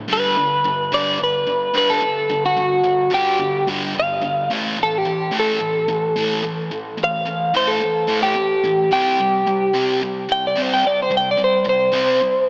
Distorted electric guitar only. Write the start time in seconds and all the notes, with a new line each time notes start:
0.08 G2 D3 G3
0.36 G2 D3
0.64 G2 D3
0.92 G2 D3 G3
1.19 G2 D3
1.47 G2 D3
1.74 G2 D3 G3
2.02 G2 D3
2.29 G2 D3
2.57 G2 D3
2.84 G2 D3
3.10 G2 D3 G3
3.39 G2 D3
3.67 G2 D3 G3
3.95 G2 D3
4.21 G2 D3
4.50 A2 E3 A3
4.78 A2 E3
5.06 A2 E3
5.32 A2 E3 A3
5.60 A2 E3
5.88 A2 E3
6.16 A2 E3 A3
6.43 A2 E3
6.71 A2 E3
6.97 A2 E3
7.25 A2 E3
7.54 A2 E3 A3
7.81 A2 E3
8.08 A2 E3 A3
8.36 A2 E3
8.64 A2 E3
8.91 C3 G3 C4
9.20 C3 G3
9.46 C3 G3
9.73 C3 G3 C4
10.02 C3 G3
10.29 C3 G3
10.56 C3 G3 C4
10.84 C3 G3
11.10 C3 G3
11.38 C3 G3
11.65 C3 G3
11.93 C3 G3 C4
12.21 C3 G3